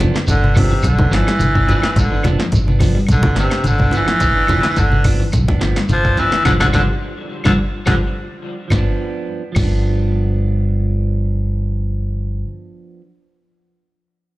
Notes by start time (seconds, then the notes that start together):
0.00 F1 F3 B3 D4, snare, closed hi-hat, high conga, low conga
0.14 D3, snare, closed hi-hat, shekere
0.27 G1 D3, kick, closed hi-hat, high conga, low conga, shekere
0.42 B3 D4, high conga, shekere
0.54 F3 B3 D4, kick, open hi-hat, high conga, low conga, claves, shekere
0.59 C3
0.70 E3, shekere
0.83 B1, kick, closed hi-hat, claves, shekere
0.88 D3
0.98 F1 B3, muted clean electric guitar stroke, kick, high conga, shekere
1.11 G1 E3 F3 B3 D4, snare, closed hi-hat, shekere
1.27 G3, snare, closed hi-hat, claves, shekere
1.39 G1 D3, closed hi-hat, high conga, shekere
1.55 B3 D4, kick, high conga, shekere
1.67 F3 B3 D4, closed hi-hat, low conga, shekere
1.82 E3, muted fingered electric bass stroke, snare, claves, shekere
1.96 G1 D3, kick, closed hi-hat, high conga, shekere
2.11 E3 B3 D4, shekere
2.23 F1 D3 F3 B3 D4, snare, closed hi-hat, high conga, low conga, claves, shekere
2.39 F3, muted fingered electric bass stroke, snare, shekere
2.52 G1, kick, closed hi-hat, high conga, low conga, shekere
2.67 B3 D4, high conga, shekere
2.79 F3 B3 D4, kick, open hi-hat, high conga, low conga, claves, shekere
2.95 G3, shekere
3.07 B1, kick, closed hi-hat, high conga, claves
3.11 D3, shekere
3.23 F1 B3 D4, kick, high conga, shekere
3.35 G1 C3 D3 B3 D4, snare, closed hi-hat, shekere
3.50 snare, closed hi-hat, claves
3.55 shekere
3.64 G1 D3, closed hi-hat, high conga, shekere
3.79 B3 D4, kick, high conga, shekere
3.91 D3 F3 B3 D4, closed hi-hat, low conga, shekere
3.97 E3
4.06 F3, muted fingered electric bass stroke, snare, closed hi-hat, claves, shekere
4.20 G1, kick, snare, closed hi-hat, shekere
4.35 B3 D4, shekere
4.47 F1 F3 B3 D4, snare, closed hi-hat, high conga, low conga, claves, shekere
4.63 D3, snare, closed hi-hat, shekere
4.76 G1 D3, kick, closed hi-hat, high conga, shekere
4.91 B3 D4, high conga, shekere
5.04 F3 B3 D4, kick, open hi-hat, low conga, claves, shekere
5.20 E3, shekere
5.32 B1, kick, closed hi-hat, claves, shekere
5.48 F1 B3 D4, kick, high conga, shekere
5.61 G1 D3 F3 B3, snare, closed hi-hat, shekere
5.76 G3, snare, closed hi-hat, claves, shekere
5.89 G1 D3 F3, closed hi-hat, high conga, shekere
6.04 B3 D4, kick, snare, shekere
6.17 E3 F3 B3 D4, closed hi-hat, low conga, shekere
6.32 E3, muted fingered electric bass stroke, snare, claves, shekere
6.45 G1 D3 F3 G3 B3 D4, kick, snare, high conga, claves, shekere
6.60 G1 D3 F3 G3 B3 D4, kick, snare, high conga, claves, shekere
6.73 G1 D3 F3 G3 B3 D4, kick, snare, high conga, claves, shekere
7.44 G1 D3 F3 G3 B3 D4, kick, snare, high conga, claves, shekere
7.86 G1 D3 F3 G3 B3 D4, kick, snare, high conga, claves, shekere
8.68 G1 G2 F3, kick, snare, low conga, claves, shekere
8.74 B3
8.78 D4
9.52 G1 G2 F3, kick, crash, low conga, claves, shekere
9.59 B3
9.63 D4